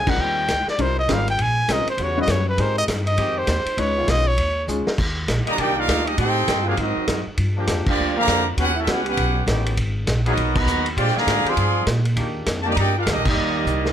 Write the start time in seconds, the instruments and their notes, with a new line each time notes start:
Already playing: upright bass C2, trombone section D3 A#3 C4 G#4, trumpet G#5
0.07 grand piano G3 C4 D#4 F4 A#4, trumpet F#5, kick, crash
0.18 upright bass D#2, trumpet G5, kick
0.48 upright bass C#2, kick, snare, hi-hat pedal, ride
0.66 trumpet D5, muted upright bass stroke, snare
0.78 upright bass C2, grand piano G3 C4 D#4 F4 A#4, trumpet C5, kick, ride
0.99 trumpet D#5
1.07 upright bass G#1, trombone section D#3 A#3 C4 G4, grand piano G3 C4 D#4 F4 A#4, kick, snare, hi-hat pedal, ride
1.13 trumpet F5
1.28 trumpet G5, ride
1.38 upright bass A#1, trumpet G#5, kick, ride
1.68 upright bass C2, grand piano G#3 C4 C#4 F4 A#4, kick, snare, hi-hat pedal, ride
1.73 trumpet D#5
1.85 muted upright bass stroke, ride
1.90 trumpet C5
1.97 upright bass E2, trombone section C#3 G3 B3 F#4, kick, ride
2.03 trumpet C#5
2.17 grand piano G3 C#4 E4 F#4 B4, trumpet D#5
2.28 upright bass F#2, trumpet C#5, kick, snare, hi-hat pedal, ride
2.49 trumpet B4
2.58 upright bass G#2, grand piano C4 D#4 G4 G#4 A#4, trumpet C5, kick, ride
2.78 trumpet D#5
2.88 upright bass G2, kick, snare, hi-hat pedal, ride
3.07 trumpet D#5, ride
3.17 upright bass F2, trombone section D#3 G#3 C4 G4, kick, ride
3.38 trumpet C5
3.47 upright bass D#2, kick, snare, hi-hat pedal, ride
3.65 muted upright bass stroke, ride
3.77 upright bass C#2, grand piano G#3 C#4 D#4 F4 B4, trumpet C#5, kick, ride
3.96 trombone section D#3 B3 C#4 F4
4.07 upright bass B1, trumpet D#5, kick, snare, hi-hat pedal, ride
4.27 trumpet C#5
4.38 upright bass D#2, kick, ride
4.67 upright bass C#2, grand piano G#3 C#4 D#4 F4 G#4, hi-hat pedal
4.87 muted upright bass stroke, snare
4.98 upright bass D#2, kick, crash
5.28 upright bass A#1, kick, snare, hi-hat pedal, ride
5.46 trombone section D3 G3 A#3, trumpet section G4 D5 D#5 A#5, ride
5.57 upright bass C2, trombone section D#3 A#3 D4 G4, trumpet section D#4 A#4 D5 G5, kick, ride
5.76 trombone section A#3 D#4 F4, trumpet section D#4 A#4 D5 F5
5.88 upright bass D2, kick, snare, hi-hat pedal, ride
6.05 trombone section G3 A#3 D#4, trumpet section A#3 D4 G4 D#5, ride
6.16 upright bass A2, trombone section C4 D#4 G4, trumpet section D#4 A4 C5 G5, kick, ride
6.48 upright bass G2, kick, snare, hi-hat pedal, ride
6.64 trombone section F#3 A#3 C4 F4 G#4, trumpet section D4 G4 A#4 F5
6.77 upright bass G#2, trombone section F#3 C4 D#4, trumpet section C4 F#4 A#4 D#5, kick, ride
6.97 muted upright bass stroke
7.07 upright bass F#2, kick, snare, hi-hat pedal, ride
7.26 muted upright bass stroke
7.37 upright bass G2, kick, ride
7.57 trombone section F3 A#3 D4 G4
7.67 upright bass F2, kick, snare, hi-hat pedal, ride
7.86 trombone section F3 A#3 D4, trumpet section A#3 F4 G4 D5, muted upright bass stroke, kick, crash
7.96 upright bass D2
8.17 trombone section D3 F3 A#3, trumpet section G4 D5 F5 A#5
8.27 upright bass F2, kick, snare, hi-hat pedal, ride
8.57 upright bass D#2, trombone section B3 C#4 F#4, trumpet section C#4 G4 B4 F#5, kick, ride
8.76 trumpet section C#4 F#4 A4 E5, trombone section E4
8.86 upright bass C#2, trombone section B3 C#4 F#4, trumpet section C#4 G4 B4 F#5, kick, snare, hi-hat pedal, ride
9.05 trombone section B3 C#4 G4, trumpet section C#4 G4 B4 F#5, ride
9.17 upright bass B1, kick, ride
9.47 upright bass A1, trombone section D#3 B3 C#4 G4, kick, snare, hi-hat pedal, ride
9.66 ride
9.77 upright bass G#1, kick, ride
10.07 upright bass A#1, kick, snare, hi-hat pedal, ride
10.25 trombone section F#3 A#3 B3 D#4 G#4, trumpet section B3 F#4 A#4 D#5, ride
10.37 upright bass B1, kick, ride
10.55 trombone section D#3 F#3 B3, trumpet section F#4 D#5 A#5 B5, kick, crash
10.66 upright bass D#2, hi-hat pedal
10.86 ride
10.97 upright bass A#2, trombone section G#3 D4 G4, trumpet section F4 C5 D5 G5, kick, ride
11.08 snare
11.15 trombone section D3 F3 A#3, trumpet section G#4 D5 F5 A#5, muted upright bass stroke, snare
11.27 upright bass G#2, kick, snare, hi-hat pedal, ride
11.44 trombone section D3 F3 G#3 C4 G4 G#4, trumpet section G#4 D5 C6, muted upright bass stroke, ride
11.49 trumpet section F5
11.57 upright bass G2, kick, ride
11.86 upright bass A#2, kick, snare, hi-hat pedal, ride
12.05 ride
12.16 upright bass D#2, trombone section D#3 A#3 D4 G4, kick, ride
12.46 upright bass F2, kick, snare, hi-hat pedal, ride
12.62 trombone section D#3 A#3 D4 G4, trumpet section A5
12.66 trombone section D3 G3 A#3
12.70 trumpet section G4 D5 D#5 A#5
12.76 upright bass G2, trombone section A#3 D4 G4, trumpet section D#4 A#4 D5 G5, kick, ride
12.98 trumpet section D4 G4 A#4 F5, trombone section F4
13.06 upright bass D2, trombone section G3 A#3 D#4, trumpet section A#3 D4 G4 D#5, kick, snare, hi-hat pedal, ride
13.16 upright bass A#1
13.25 upright bass G1, trombone section G3 A#3 D#4, trumpet section A#3 G4 D5 D#5, kick, crash
13.35 upright bass D#2
13.65 upright bass C2, hi-hat pedal
13.85 snare